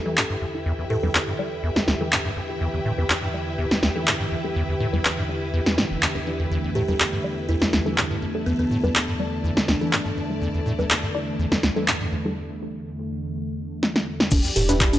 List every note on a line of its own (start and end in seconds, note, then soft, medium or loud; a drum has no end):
0.00 14.28 E2 medium
0.00 14.28 D3 medium
0.00 12.36 E4 medium
0.00 6.50 G4 medium
0.00 12.36 B4 medium
0.00 8.95 E5 medium
0.05 0.19 E3 medium
0.05 0.15 G3 medium
0.05 0.15 D4 medium
0.05 0.15 E4 medium
0.05 0.15 A4 medium
0.05 8.02 G5 medium
0.17 0.24 E2 medium
0.17 clap loud
0.30 0.36 G2 medium
0.41 0.46 F2 medium
0.54 0.70 G3 medium
0.54 0.70 D4 medium
0.54 0.70 E4 medium
0.54 0.70 A4 medium
0.66 0.73 E2 loud
0.79 0.85 E2 medium
0.90 0.97 A2 loud
0.90 1.27 A4 medium
1.03 1.09 E2 medium
1.03 1.36 G3 medium
1.03 1.36 D4 medium
1.03 1.36 E4 medium
1.03 1.36 B4 medium
1.15 1.19 E2 medium
1.15 clap loud
1.28 1.34 G2 medium
1.39 1.50 G3 medium
1.39 1.50 D4 medium
1.39 1.50 E4 medium
1.39 1.50 D5 medium
1.63 1.70 E2 medium
1.76 1.80 E2 medium
1.76 snare medium
1.88 1.95 D2 loud
1.88 snare medium
2.01 2.14 E3 medium
2.01 2.10 G3 medium
2.01 2.10 D4 medium
2.01 2.10 E4 medium
2.01 2.10 A4 loud
2.12 2.19 E2 medium
2.12 clap loud
2.25 2.31 G2 medium
2.36 2.41 F2 medium
2.49 2.65 G3 medium
2.49 2.65 D4 medium
2.49 2.65 E4 medium
2.49 2.65 A4 medium
2.61 2.68 E2 loud
2.74 2.80 E2 medium
2.85 2.92 A2 loud
2.98 3.04 E2 medium
2.98 3.31 G3 medium
2.98 3.31 D4 medium
2.98 3.31 E4 medium
2.98 3.31 B4 medium
3.10 3.14 E2 medium
3.10 clap loud
3.22 3.29 G2 medium
3.34 3.45 G3 medium
3.34 3.45 D4 medium
3.34 3.45 E4 medium
3.34 3.45 D5 medium
3.58 3.65 E2 loud
3.71 3.75 E2 medium
3.71 snare medium
3.83 3.90 D2 loud
3.83 snare medium
3.96 4.09 E3 medium
3.96 4.05 G3 medium
3.96 4.05 D4 medium
3.96 4.05 E4 medium
3.96 4.05 A4 medium
4.07 4.14 E2 medium
4.07 clap loud
4.20 4.26 G2 medium
4.32 4.36 F2 medium
4.44 4.60 G3 medium
4.44 4.60 D4 medium
4.44 4.60 E4 medium
4.44 4.60 A4 medium
4.56 4.63 E2 loud
4.69 4.75 E2 medium
4.80 4.87 A2 loud
4.93 5.00 E2 medium
4.93 5.26 G3 medium
4.93 5.26 D4 medium
4.93 5.26 E4 medium
4.93 5.26 B4 loud
5.05 5.09 E2 medium
5.05 clap loud
5.18 5.24 G2 medium
5.29 5.40 G3 medium
5.29 5.40 D4 medium
5.29 5.40 E4 medium
5.29 5.40 D5 medium
5.53 5.61 E2 medium
5.66 5.79 E2 medium
5.66 snare medium
5.78 5.85 A2 medium
5.78 snare medium
5.91 5.97 E1 medium
6.02 6.07 E2 medium
6.02 clap loud
6.15 6.19 E2 medium
6.15 6.25 G3 medium
6.15 6.25 D4 medium
6.15 6.25 E4 medium
6.15 6.25 B4 medium
6.27 6.31 E3 medium
6.27 6.44 G3 medium
6.27 6.44 D4 medium
6.27 6.44 E4 medium
6.27 6.44 D5 medium
6.40 6.46 E2 medium
6.51 6.58 E2 loud
6.51 14.30 A3 medium
6.64 6.70 E2 medium
6.75 6.83 A2 loud
6.75 6.84 G4 medium
6.88 6.95 E2 medium
6.88 7.22 G3 medium
6.88 7.22 D4 medium
6.88 7.22 E4 medium
6.88 6.96 G4 medium
6.88 7.22 B4 loud
7.00 7.04 E2 medium
7.00 clap loud
7.13 7.19 G2 medium
7.24 7.35 G3 medium
7.24 7.35 D4 medium
7.24 7.35 E4 medium
7.24 7.35 D5 medium
7.49 7.56 E2 loud
7.49 7.68 E4 medium
7.62 7.66 E2 medium
7.62 snare medium
7.73 7.80 D2 loud
7.73 snare medium
7.86 7.99 E3 medium
7.86 7.96 G3 medium
7.86 7.96 D4 medium
7.86 7.96 E4 medium
7.86 7.96 A4 medium
7.86 12.37 A5 medium
7.98 8.05 E2 medium
7.98 clap loud
8.11 8.17 G2 medium
8.22 8.26 F2 medium
8.35 8.51 G3 medium
8.35 8.51 D4 medium
8.35 8.51 E4 medium
8.35 8.51 A4 medium
8.46 8.53 E2 loud
8.46 8.55 B3 medium
8.59 8.66 E2 medium
8.59 8.66 B3 medium
8.71 8.78 A2 loud
8.81 8.90 E2 loud
8.81 9.17 G3 medium
8.81 9.17 D4 medium
8.81 9.17 E4 medium
8.81 9.17 B4 loud
8.81 12.37 D5 medium
8.95 8.99 E2 medium
8.95 clap loud
9.08 9.14 G2 medium
9.19 9.30 G3 medium
9.19 9.30 D4 medium
9.19 9.30 E4 medium
9.19 9.30 D5 medium
9.44 9.51 E2 loud
9.57 9.61 E2 medium
9.57 snare medium
9.68 9.75 D2 medium
9.68 10.37 D4 medium
9.68 snare medium
9.81 9.94 E3 medium
9.81 9.91 G3 medium
9.81 9.91 D4 medium
9.81 9.91 E4 medium
9.81 9.91 A4 medium
9.93 10.00 E2 medium
9.93 clap loud
10.06 10.12 G2 medium
10.17 10.21 F2 medium
10.30 10.46 G3 medium
10.30 10.46 D4 medium
10.30 10.46 E4 medium
10.30 10.46 A4 medium
10.41 10.48 E2 loud
10.54 10.61 E2 medium
10.66 10.73 A2 loud
10.79 10.85 E2 medium
10.79 11.12 G3 medium
10.79 11.12 D4 medium
10.79 11.12 E4 medium
10.79 11.12 B4 loud
10.90 10.94 E2 medium
10.90 clap loud
11.03 11.09 G2 medium
11.15 11.25 G3 medium
11.15 11.25 D4 medium
11.15 11.25 E4 medium
11.15 11.25 D5 medium
11.39 11.46 E2 loud
11.52 11.56 E2 medium
11.52 snare medium
11.63 11.70 D2 loud
11.63 snare medium
11.76 11.89 E3 medium
11.76 11.86 G3 medium
11.76 11.86 D4 medium
11.76 11.86 E4 medium
11.76 11.86 A4 medium
11.88 11.95 E2 medium
11.88 clap loud
12.01 12.07 G2 medium
12.12 12.16 F2 medium
12.25 12.36 G3 medium
12.25 12.36 D4 medium
12.25 12.36 E4 medium
12.25 12.36 A4 medium
13.83 snare medium
13.96 snare medium
14.20 snare medium
14.31 14.41 E1 medium
14.31 14.39 E2 loud
14.31 14.99 E3 medium
14.31 14.99 D4 medium
14.31 14.99 G4 loud
14.31 kick loud
14.31 closed hi-hat medium
14.31 crash loud
14.31 high conga medium
14.31 maracas medium
14.44 14.51 E2 medium
14.44 snare soft
14.44 maracas soft
14.56 14.99 E1 loud
14.56 14.63 A2 loud
14.56 14.64 G4 medium
14.56 snare soft
14.56 closed hi-hat medium
14.56 open hi-hat loud
14.69 14.75 E2 medium
14.69 14.99 G3 medium
14.69 14.99 D4 medium
14.69 14.99 E4 medium
14.69 14.76 G4 medium
14.69 14.99 B4 loud
14.69 snare medium
14.69 closed hi-hat medium
14.69 high conga soft
14.69 maracas medium
14.80 14.85 E2 medium
14.80 kick loud
14.80 snare loud
14.80 clap loud
14.80 closed hi-hat medium
14.80 maracas medium
14.90 14.99 G2 medium
14.90 14.99 E5 medium
14.90 closed hi-hat soft
14.90 open hi-hat medium
14.90 high conga medium
14.90 maracas soft